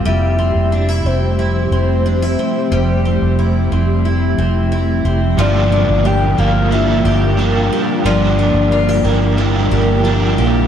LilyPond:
<<
  \new Staff \with { instrumentName = "Soft synth lead" } { \time 4/4 \key g \dorian \tempo 4 = 90 e''4. c''2~ c''8~ | c''2. r4 | d''4 g''8 f''8 e''4. r8 | d''2 r2 | }
  \new Staff \with { instrumentName = "Twelve-string acoustic guitar" } { \time 4/4 \key g \dorian g8 c'8 d'16 e'16 c'8 e'8 c'8 d'16 e'16 c'8 | g8 c'8 e'8 c'8 e'8 c'8 e'8 c'8 | f8 d'8 g'8 bes8 d'8 g'8 d'8 g'8 | f8 d'8 f'16 g'16 bes8 d'8 g'8 d'8 g'8 | }
  \new Staff \with { instrumentName = "Ambient pad" } { \time 4/4 \key g \dorian << { <c f a g'>1~ | <c f a g'>1 | <d g bes bes'>1~ | <d g bes bes'>1 | } \\ { e'1 | e'1 | f'1 | e'1 | } >> }
  \new Staff \with { instrumentName = "Overdriven electric guitar" } { \time 4/4 \key g \dorian r1 | r1 | <g, d f bes d' g'>4. <f bes d' g'>8 <f bes d' g'>4 <f bes d' g'>4 | <g, d f bes d' g'>4. <f bes d' g'>8 <f bes d' g'>4 <f bes d' g'>4 | }
  \new Staff \with { instrumentName = "Fingered electric bass" } { \clef bass \time 4/4 \key g \dorian f,,8. f,,8. f,,4 f,,4 r8 | f,,8. f,,8. f,,4 f,,4 f,,8 | g,,8. g,,8. g,,4 g,,4 r8 | g,,8. g,,8. g,,4 g,,4 bes,,8 | }
>>